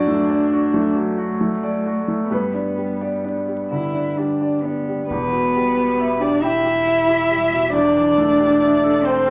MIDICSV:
0, 0, Header, 1, 5, 480
1, 0, Start_track
1, 0, Key_signature, 1, "minor"
1, 0, Tempo, 894188
1, 1241, Tempo, 927357
1, 1242, Time_signature, 6, 3, 24, 8
1, 2681, Tempo, 877193
1, 4983, End_track
2, 0, Start_track
2, 0, Title_t, "Violin"
2, 0, Program_c, 0, 40
2, 2686, Note_on_c, 0, 71, 53
2, 3294, Note_on_c, 0, 74, 48
2, 3302, Note_off_c, 0, 71, 0
2, 3411, Note_off_c, 0, 74, 0
2, 3414, Note_on_c, 0, 76, 60
2, 4116, Note_off_c, 0, 76, 0
2, 4125, Note_on_c, 0, 74, 67
2, 4843, Note_on_c, 0, 72, 70
2, 4851, Note_off_c, 0, 74, 0
2, 4983, Note_off_c, 0, 72, 0
2, 4983, End_track
3, 0, Start_track
3, 0, Title_t, "Cello"
3, 0, Program_c, 1, 42
3, 0, Note_on_c, 1, 62, 59
3, 522, Note_on_c, 1, 57, 66
3, 530, Note_off_c, 1, 62, 0
3, 1236, Note_off_c, 1, 57, 0
3, 1239, Note_on_c, 1, 59, 38
3, 1899, Note_off_c, 1, 59, 0
3, 1964, Note_on_c, 1, 64, 45
3, 2205, Note_on_c, 1, 62, 37
3, 2213, Note_off_c, 1, 64, 0
3, 2442, Note_on_c, 1, 59, 37
3, 2449, Note_off_c, 1, 62, 0
3, 2681, Note_off_c, 1, 59, 0
3, 2685, Note_on_c, 1, 59, 57
3, 3273, Note_off_c, 1, 59, 0
3, 3292, Note_on_c, 1, 62, 57
3, 3409, Note_on_c, 1, 64, 72
3, 3417, Note_off_c, 1, 62, 0
3, 4127, Note_off_c, 1, 64, 0
3, 4130, Note_on_c, 1, 62, 74
3, 4838, Note_on_c, 1, 60, 85
3, 4846, Note_off_c, 1, 62, 0
3, 4983, Note_off_c, 1, 60, 0
3, 4983, End_track
4, 0, Start_track
4, 0, Title_t, "Grand piano"
4, 0, Program_c, 2, 0
4, 0, Control_c, 2, 64, 127
4, 0, Note_on_c, 2, 42, 55
4, 0, Note_on_c, 2, 66, 48
4, 0, Note_on_c, 2, 74, 78
4, 40, Note_on_c, 2, 57, 45
4, 113, Note_off_c, 2, 66, 0
4, 152, Note_off_c, 2, 74, 0
4, 160, Note_on_c, 2, 74, 39
4, 230, Note_off_c, 2, 57, 0
4, 279, Note_on_c, 2, 66, 42
4, 349, Note_off_c, 2, 74, 0
4, 396, Note_on_c, 2, 57, 46
4, 468, Note_off_c, 2, 66, 0
4, 512, Note_on_c, 2, 54, 42
4, 587, Note_off_c, 2, 57, 0
4, 632, Note_on_c, 2, 66, 41
4, 705, Note_off_c, 2, 54, 0
4, 755, Note_on_c, 2, 57, 37
4, 826, Note_off_c, 2, 66, 0
4, 875, Note_on_c, 2, 74, 36
4, 948, Note_off_c, 2, 57, 0
4, 998, Note_on_c, 2, 66, 36
4, 1070, Note_off_c, 2, 74, 0
4, 1116, Note_on_c, 2, 57, 32
4, 1193, Note_off_c, 2, 66, 0
4, 1219, Note_off_c, 2, 42, 0
4, 1235, Note_on_c, 2, 43, 37
4, 1241, Note_off_c, 2, 57, 0
4, 1245, Note_on_c, 2, 71, 44
4, 1251, Control_c, 2, 64, 0
4, 1333, Control_c, 2, 64, 127
4, 1360, Note_on_c, 2, 62, 28
4, 1478, Note_on_c, 2, 55, 30
4, 1553, Note_off_c, 2, 62, 0
4, 1603, Note_on_c, 2, 74, 27
4, 1672, Note_off_c, 2, 55, 0
4, 1724, Note_on_c, 2, 62, 27
4, 1795, Note_off_c, 2, 74, 0
4, 1847, Note_on_c, 2, 55, 27
4, 1915, Note_off_c, 2, 62, 0
4, 1964, Note_on_c, 2, 50, 26
4, 2036, Note_off_c, 2, 55, 0
4, 2084, Note_on_c, 2, 62, 28
4, 2156, Note_off_c, 2, 50, 0
4, 2209, Note_on_c, 2, 55, 26
4, 2276, Note_off_c, 2, 62, 0
4, 2327, Note_on_c, 2, 74, 26
4, 2400, Note_off_c, 2, 55, 0
4, 2426, Note_off_c, 2, 71, 0
4, 2451, Note_on_c, 2, 62, 27
4, 2519, Note_off_c, 2, 74, 0
4, 2574, Note_on_c, 2, 55, 25
4, 2639, Note_off_c, 2, 62, 0
4, 2659, Note_off_c, 2, 43, 0
4, 2688, Note_off_c, 2, 55, 0
4, 2690, Note_on_c, 2, 40, 43
4, 2693, Control_c, 2, 64, 0
4, 2782, Control_c, 2, 64, 127
4, 2808, Note_on_c, 2, 47, 33
4, 2931, Note_on_c, 2, 55, 38
4, 3003, Note_off_c, 2, 47, 0
4, 3047, Note_on_c, 2, 67, 31
4, 3125, Note_off_c, 2, 55, 0
4, 3176, Note_on_c, 2, 76, 32
4, 3244, Note_off_c, 2, 67, 0
4, 3291, Note_on_c, 2, 67, 40
4, 3368, Note_off_c, 2, 76, 0
4, 3412, Note_on_c, 2, 79, 38
4, 3485, Note_off_c, 2, 67, 0
4, 3534, Note_on_c, 2, 67, 37
4, 3604, Note_off_c, 2, 79, 0
4, 3654, Note_on_c, 2, 76, 38
4, 3724, Note_off_c, 2, 67, 0
4, 3771, Note_on_c, 2, 67, 36
4, 3844, Note_off_c, 2, 76, 0
4, 3891, Note_on_c, 2, 55, 37
4, 3962, Note_off_c, 2, 67, 0
4, 4012, Note_on_c, 2, 47, 37
4, 4082, Note_off_c, 2, 55, 0
4, 4111, Note_off_c, 2, 40, 0
4, 4123, Note_on_c, 2, 40, 51
4, 4131, Note_off_c, 2, 47, 0
4, 4140, Control_c, 2, 64, 0
4, 4227, Control_c, 2, 64, 127
4, 4252, Note_on_c, 2, 52, 38
4, 4368, Note_on_c, 2, 57, 41
4, 4443, Note_off_c, 2, 52, 0
4, 4490, Note_on_c, 2, 67, 39
4, 4561, Note_off_c, 2, 57, 0
4, 4613, Note_on_c, 2, 76, 39
4, 4681, Note_off_c, 2, 67, 0
4, 4729, Note_on_c, 2, 69, 51
4, 4801, Note_off_c, 2, 76, 0
4, 4846, Note_on_c, 2, 79, 47
4, 4918, Note_off_c, 2, 69, 0
4, 4983, Note_off_c, 2, 40, 0
4, 4983, Note_off_c, 2, 79, 0
4, 4983, End_track
5, 0, Start_track
5, 0, Title_t, "Sub bass"
5, 0, Program_c, 3, 38
5, 2681, Note_on_c, 3, 28, 53
5, 4983, Note_off_c, 3, 28, 0
5, 4983, End_track
0, 0, End_of_file